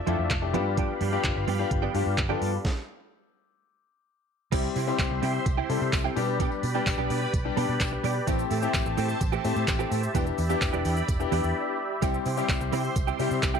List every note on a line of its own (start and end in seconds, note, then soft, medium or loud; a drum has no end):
0.00 0.50 F3 medium
0.00 2.61 D5 medium
0.00 0.52 E5 medium
0.00 0.51 A5 medium
0.07 0.15 F2 medium
0.07 0.22 F3 medium
0.07 0.31 A3 medium
0.07 0.19 A3 medium
0.07 0.31 D4 medium
0.07 0.31 E4 medium
0.07 0.18 E4 medium
0.07 0.31 F4 loud
0.07 0.17 A4 medium
0.07 0.29 G5 medium
0.07 closed hi-hat medium
0.19 0.26 F2 loud
0.19 muted clean electric guitar stroke soft
0.30 0.56 F1 loud
0.30 0.52 A5 medium
0.30 muted clean electric guitar stroke soft
0.30 kick loud
0.30 clap loud
0.30 closed hi-hat medium
0.42 0.54 A3 medium
0.42 0.52 D4 medium
0.42 0.54 E4 medium
0.42 0.53 G4 medium
0.42 muted clean electric guitar stroke soft
0.53 0.84 G2 loud
0.53 0.68 F3 medium
0.53 1.01 B3 loud
0.53 0.65 B3 medium
0.53 1.01 D4 medium
0.53 0.65 D4 medium
0.53 1.01 F4 medium
0.53 2.63 G4 medium
0.53 1.01 G4 loud
0.53 0.64 G4 medium
0.53 2.63 F5 medium
0.53 0.76 B5 medium
0.53 2.63 B5 medium
0.53 closed hi-hat medium
0.65 muted clean electric guitar stroke soft
0.77 0.92 F3 medium
0.77 0.92 B3 medium
0.77 0.93 D4 medium
0.77 0.93 G4 loud
0.77 kick loud
0.77 closed hi-hat medium
1.00 1.16 G2 loud
1.00 1.12 F3 medium
1.00 1.12 B3 medium
1.00 1.11 D4 medium
1.00 1.11 G4 medium
1.00 open hi-hat medium
1.12 1.23 F3 medium
1.12 1.44 B3 medium
1.12 1.23 B3 medium
1.12 1.44 D4 medium
1.12 1.24 D4 medium
1.12 1.45 F4 medium
1.12 1.24 G4 medium
1.12 1.45 G4 medium
1.24 1.32 G1 medium
1.24 muted clean electric guitar stroke soft
1.24 kick loud
1.24 clap loud
1.24 closed hi-hat medium
1.35 1.44 G1 medium
1.35 muted clean electric guitar stroke soft
1.47 1.63 G2 loud
1.47 1.62 F3 medium
1.47 1.59 B3 medium
1.47 1.58 D4 medium
1.47 1.58 G4 medium
1.47 open hi-hat medium
1.59 1.83 B3 medium
1.59 1.83 D4 medium
1.59 1.83 F4 medium
1.59 1.83 G4 loud
1.59 muted clean electric guitar stroke soft
1.71 1.86 G1 loud
1.71 muted clean electric guitar stroke soft
1.71 kick loud
1.71 closed hi-hat medium
1.82 1.93 F3 medium
1.82 1.93 B3 medium
1.82 1.94 D4 medium
1.82 1.94 G4 medium
1.94 2.02 G2 loud
1.94 2.06 F3 medium
1.94 2.18 B3 medium
1.94 2.06 B3 medium
1.94 2.18 D4 medium
1.94 2.05 D4 medium
1.94 2.19 F4 medium
1.94 2.19 G4 medium
1.94 2.05 G4 medium
1.94 open hi-hat medium
2.06 2.19 G2 medium
2.06 muted clean electric guitar stroke soft
2.17 2.33 G1 loud
2.17 muted clean electric guitar stroke soft
2.17 kick loud
2.17 clap loud
2.17 closed hi-hat medium
2.29 2.40 F3 medium
2.29 2.54 B3 medium
2.29 2.40 B3 medium
2.29 2.54 D4 medium
2.29 2.41 D4 medium
2.29 2.54 F4 medium
2.29 2.41 G4 loud
2.29 2.54 A4 loud
2.41 2.57 G2 loud
2.41 2.53 F3 medium
2.41 2.53 B3 medium
2.41 2.52 D4 medium
2.41 2.51 G4 medium
2.41 open hi-hat medium
2.53 muted clean electric guitar stroke soft
2.65 kick loud
2.65 snare medium
4.52 4.68 C2 loud
4.52 4.67 G3 medium
4.52 4.76 G3 medium
4.52 4.76 C4 medium
4.52 4.67 C4 medium
4.52 4.76 E4 medium
4.52 4.67 E4 loud
4.52 10.11 G4 medium
4.52 4.76 G4 medium
4.52 4.68 G4 loud
4.52 6.15 C5 medium
4.52 6.15 E5 medium
4.52 6.15 C6 medium
4.52 kick loud
4.52 closed hi-hat medium
4.52 crash loud
4.52 tambourine medium
4.64 tambourine soft
4.75 4.91 C3 loud
4.75 4.87 G3 medium
4.75 4.87 C4 medium
4.75 4.86 E4 medium
4.75 4.86 G4 medium
4.75 open hi-hat medium
4.75 tambourine soft
4.87 5.43 G3 medium
4.87 4.98 G3 medium
4.87 5.43 C4 medium
4.87 4.98 C4 medium
4.87 5.44 E4 medium
4.87 4.99 E4 medium
4.87 4.99 G4 medium
4.87 5.44 G4 medium
4.87 tambourine soft
4.99 5.07 C2 loud
4.99 muted clean electric guitar stroke soft
4.99 kick loud
4.99 clap loud
4.99 closed hi-hat medium
4.99 tambourine medium
5.11 5.19 C2 loud
5.11 muted clean electric guitar stroke soft
5.22 5.38 C3 loud
5.22 5.37 G3 medium
5.22 5.34 C4 medium
5.22 5.34 E4 medium
5.22 5.33 G4 medium
5.22 open hi-hat medium
5.22 tambourine medium
5.34 muted clean electric guitar stroke soft
5.46 5.61 C2 medium
5.46 muted clean electric guitar stroke soft
5.46 kick loud
5.46 closed hi-hat medium
5.46 tambourine medium
5.57 5.68 G3 medium
5.57 5.69 C4 medium
5.57 5.69 E4 medium
5.57 5.70 G4 medium
5.69 5.77 C3 loud
5.69 5.81 G3 medium
5.69 6.14 G3 medium
5.69 6.16 C4 medium
5.69 5.81 C4 medium
5.69 6.16 E4 medium
5.69 5.81 E4 medium
5.69 5.80 G4 medium
5.69 6.17 A4 loud
5.69 open hi-hat medium
5.69 tambourine soft
5.81 5.89 C3 medium
5.81 muted clean electric guitar stroke medium
5.81 tambourine soft
5.93 6.08 C2 loud
5.93 muted clean electric guitar stroke soft
5.93 kick loud
5.93 clap loud
5.93 closed hi-hat medium
5.93 tambourine medium
6.04 6.15 G3 medium
6.04 6.16 C4 medium
6.04 6.17 E4 medium
6.04 6.17 G4 medium
6.16 6.47 B2 loud
6.16 6.63 G3 loud
6.16 6.28 G3 medium
6.16 6.63 B3 medium
6.16 6.28 B3 medium
6.16 6.63 D4 medium
6.16 6.27 D4 medium
6.16 6.63 G4 loud
6.16 6.27 G4 medium
6.16 8.25 B4 medium
6.16 8.25 D5 medium
6.16 8.25 B5 medium
6.16 open hi-hat medium
6.16 tambourine soft
6.28 muted clean electric guitar stroke soft
6.28 tambourine soft
6.39 6.54 G3 medium
6.39 6.51 B3 medium
6.39 6.51 D4 medium
6.39 6.50 G4 medium
6.39 kick loud
6.39 closed hi-hat medium
6.39 tambourine soft
6.51 muted clean electric guitar stroke medium
6.51 tambourine soft
6.63 6.79 B2 loud
6.63 muted clean electric guitar stroke soft
6.63 open hi-hat medium
6.63 tambourine medium
6.75 7.23 G3 medium
6.75 6.85 G3 soft
6.75 7.23 B3 medium
6.75 6.86 B3 medium
6.75 7.23 D4 medium
6.75 6.86 D4 medium
6.75 6.86 G4 medium
6.75 7.23 G4 medium
6.75 tambourine soft
6.86 6.94 B1 medium
6.86 muted clean electric guitar stroke soft
6.86 kick loud
6.86 clap loud
6.86 closed hi-hat medium
6.86 tambourine medium
6.98 7.06 B1 loud
6.98 7.09 G3 medium
6.98 7.09 B3 medium
6.98 7.10 D4 medium
6.98 7.10 G4 medium
7.10 7.25 B2 loud
7.10 7.22 G3 medium
7.10 7.21 B3 medium
7.10 7.21 D4 medium
7.10 7.20 G4 medium
7.10 open hi-hat medium
7.10 tambourine medium
7.21 muted clean electric guitar stroke soft
7.33 7.49 B1 loud
7.33 kick loud
7.33 closed hi-hat medium
7.33 tambourine medium
7.45 8.01 G3 medium
7.45 8.01 B3 medium
7.45 8.01 D4 medium
7.45 8.01 G4 loud
7.45 muted clean electric guitar stroke soft
7.57 7.65 B2 loud
7.57 7.72 G3 medium
7.57 7.68 B3 medium
7.57 7.68 D4 loud
7.57 7.67 G4 loud
7.57 7.79 A5 medium
7.57 open hi-hat medium
7.57 tambourine soft
7.68 7.76 B2 loud
7.68 muted clean electric guitar stroke soft
7.68 tambourine soft
7.80 7.96 B1 loud
7.80 8.02 G5 medium
7.80 muted clean electric guitar stroke soft
7.80 kick loud
7.80 clap loud
7.80 closed hi-hat medium
7.80 tambourine medium
7.92 muted clean electric guitar stroke medium
8.03 8.19 B2 loud
8.03 8.18 G3 medium
8.03 8.15 B3 medium
8.03 8.15 D4 medium
8.03 8.14 G4 medium
8.03 8.26 D5 medium
8.03 open hi-hat medium
8.03 tambourine medium
8.15 muted clean electric guitar stroke medium
8.27 8.43 A1 loud
8.27 8.42 E3 medium
8.27 8.51 A3 medium
8.27 8.42 A3 medium
8.27 8.51 C4 medium
8.27 8.43 C4 medium
8.27 8.51 E4 medium
8.27 8.52 G4 medium
8.27 8.43 G4 medium
8.27 10.13 C5 medium
8.27 13.60 E5 medium
8.27 10.13 A5 medium
8.27 kick loud
8.27 closed hi-hat medium
8.27 tambourine medium
8.27 shaker medium
8.39 tambourine soft
8.39 shaker medium
8.50 8.66 A2 loud
8.50 8.62 E3 medium
8.50 8.62 A3 medium
8.50 8.61 C4 medium
8.50 8.61 G4 medium
8.50 open hi-hat medium
8.50 tambourine medium
8.50 shaker medium
8.62 8.73 E3 medium
8.62 9.18 A3 medium
8.62 8.73 A3 medium
8.62 9.19 C4 medium
8.62 8.74 C4 medium
8.62 9.19 E4 medium
8.62 8.74 G4 medium
8.62 9.19 G4 loud
8.62 shaker medium
8.74 8.82 A1 loud
8.74 muted clean electric guitar stroke soft
8.74 kick loud
8.74 clap loud
8.74 closed hi-hat medium
8.74 tambourine medium
8.74 shaker medium
8.86 8.94 A1 medium
8.86 muted clean electric guitar stroke soft
8.86 shaker medium
8.97 9.13 A2 loud
8.97 9.12 E3 medium
8.97 9.09 A3 medium
8.97 9.09 C4 medium
8.97 9.08 G4 medium
8.97 open hi-hat medium
8.97 tambourine medium
8.97 shaker medium
9.09 muted clean electric guitar stroke soft
9.09 shaker medium
9.21 9.36 A1 loud
9.21 muted clean electric guitar stroke soft
9.21 kick loud
9.21 closed hi-hat medium
9.21 tambourine medium
9.21 shaker medium
9.32 9.43 E3 medium
9.32 9.43 A3 medium
9.32 9.44 C4 medium
9.32 9.44 G4 medium
9.32 shaker medium
9.44 9.52 A2 loud
9.44 9.56 E3 medium
9.44 9.92 A3 medium
9.44 9.56 A3 medium
9.44 9.93 C4 medium
9.44 9.55 C4 medium
9.44 9.93 E4 medium
9.44 9.93 G4 medium
9.44 9.55 G4 medium
9.44 open hi-hat medium
9.44 tambourine soft
9.44 shaker medium
9.56 9.64 A2 loud
9.56 muted clean electric guitar stroke soft
9.56 tambourine soft
9.56 shaker medium
9.67 9.83 A1 loud
9.67 muted clean electric guitar stroke soft
9.67 kick loud
9.67 clap loud
9.67 closed hi-hat medium
9.67 tambourine loud
9.67 shaker medium
9.79 9.90 E3 medium
9.79 9.90 A3 medium
9.79 9.91 C4 medium
9.79 9.91 G4 medium
9.79 shaker medium
9.91 10.07 A2 medium
9.91 10.03 E3 medium
9.91 10.03 A3 medium
9.91 10.02 C4 medium
9.91 10.02 G4 medium
9.91 open hi-hat medium
9.91 tambourine medium
9.91 shaker medium
10.03 muted clean electric guitar stroke soft
10.03 shaker medium
10.14 10.30 E1 loud
10.14 10.29 E3 medium
10.14 10.39 B3 medium
10.14 10.26 B3 medium
10.14 10.39 D4 medium
10.14 10.26 D4 medium
10.14 10.39 E4 medium
10.14 13.60 G4 medium
10.14 10.39 G4 medium
10.14 10.25 G4 loud
10.14 12.00 D5 medium
10.14 12.00 B5 medium
10.14 kick loud
10.14 closed hi-hat medium
10.14 tambourine soft
10.14 shaker medium
10.26 muted clean electric guitar stroke medium
10.26 tambourine soft
10.26 shaker medium
10.38 10.54 E2 medium
10.38 muted clean electric guitar stroke soft
10.38 open hi-hat medium
10.38 tambourine soft
10.38 shaker medium
10.49 10.60 E3 soft
10.49 10.98 B3 medium
10.49 10.60 B3 medium
10.49 10.61 D4 medium
10.49 10.98 D4 medium
10.49 10.98 E4 medium
10.49 10.61 G4 medium
10.49 10.98 G4 loud
10.49 tambourine soft
10.49 shaker medium
10.61 10.69 E1 loud
10.61 muted clean electric guitar stroke soft
10.61 kick loud
10.61 clap loud
10.61 closed hi-hat medium
10.61 tambourine medium
10.61 shaker medium
10.73 10.81 E1 medium
10.73 10.83 E3 medium
10.73 10.84 B3 medium
10.73 10.84 D4 medium
10.73 10.85 G4 medium
10.73 shaker medium
10.84 11.00 E2 loud
10.84 10.96 E3 medium
10.84 10.96 B3 medium
10.84 10.96 D4 medium
10.84 10.95 G4 medium
10.84 open hi-hat medium
10.84 tambourine medium
10.84 shaker medium
10.96 muted clean electric guitar stroke medium
10.96 shaker medium
11.08 11.24 E1 loud
11.08 kick loud
11.08 closed hi-hat medium
11.08 tambourine medium
11.08 shaker medium
11.20 11.76 B3 medium
11.20 11.76 D4 medium
11.20 11.76 E4 medium
11.20 11.77 G4 loud
11.20 muted clean electric guitar stroke medium
11.20 shaker soft
11.31 11.40 E2 loud
11.31 11.47 E3 medium
11.31 11.43 B3 medium
11.31 11.43 D4 medium
11.31 11.42 G4 loud
11.31 open hi-hat medium
11.31 tambourine soft
11.31 shaker medium
11.43 11.51 E2 loud
11.43 muted clean electric guitar stroke medium
11.43 shaker medium
12.02 12.18 C2 loud
12.02 12.17 G3 medium
12.02 12.26 G3 medium
12.02 12.26 C4 medium
12.02 12.17 C4 medium
12.02 12.26 E4 medium
12.02 12.18 E4 medium
12.02 12.26 G4 loud
12.02 12.18 G4 medium
12.02 13.60 C5 medium
12.02 13.60 C6 medium
12.02 kick loud
12.02 closed hi-hat medium
12.02 tambourine soft
12.02 shaker medium
12.14 shaker medium
12.25 12.41 C3 loud
12.25 12.37 G3 medium
12.25 12.37 C4 medium
12.25 12.36 E4 medium
12.25 12.36 G4 medium
12.25 open hi-hat medium
12.25 tambourine soft
12.25 shaker medium
12.37 12.93 G3 medium
12.37 12.48 G3 medium
12.37 12.93 C4 medium
12.37 12.48 C4 medium
12.37 12.93 E4 medium
12.37 12.49 E4 medium
12.37 12.49 G4 medium
12.37 12.94 G4 loud
12.37 tambourine soft
12.37 shaker medium
12.49 12.57 C2 loud
12.49 muted clean electric guitar stroke soft
12.49 kick loud
12.49 clap loud
12.49 closed hi-hat medium
12.49 tambourine medium
12.49 shaker medium
12.61 12.69 C2 loud
12.61 muted clean electric guitar stroke medium
12.61 shaker medium
12.72 12.88 C3 loud
12.72 12.87 G3 medium
12.72 12.84 C4 medium
12.72 12.83 E4 medium
12.72 12.83 G4 medium
12.72 open hi-hat medium
12.72 tambourine medium
12.72 shaker medium
12.84 muted clean electric guitar stroke medium
12.84 shaker medium
12.96 13.11 C2 medium
12.96 muted clean electric guitar stroke soft
12.96 kick loud
12.96 closed hi-hat medium
12.96 tambourine soft
12.96 shaker medium
13.07 13.18 G3 medium
13.07 13.19 C4 medium
13.07 13.19 E4 medium
13.07 13.20 G4 medium
13.07 shaker medium
13.19 13.27 C3 loud
13.19 13.31 G3 medium
13.19 13.60 G3 medium
13.19 13.60 C4 medium
13.19 13.31 C4 medium
13.19 13.60 E4 medium
13.19 13.30 E4 medium
13.19 13.60 G4 loud
13.19 13.30 G4 medium
13.19 open hi-hat medium
13.19 tambourine soft
13.19 shaker medium
13.31 13.39 C3 loud
13.31 muted clean electric guitar stroke medium
13.31 tambourine soft
13.31 shaker medium
13.42 13.58 C2 loud
13.42 muted clean electric guitar stroke soft
13.42 kick loud
13.42 clap loud
13.42 closed hi-hat medium
13.42 tambourine medium
13.42 shaker medium
13.54 13.60 G3 medium
13.54 13.60 C4 medium
13.54 13.60 E4 medium
13.54 13.60 G4 medium
13.54 shaker medium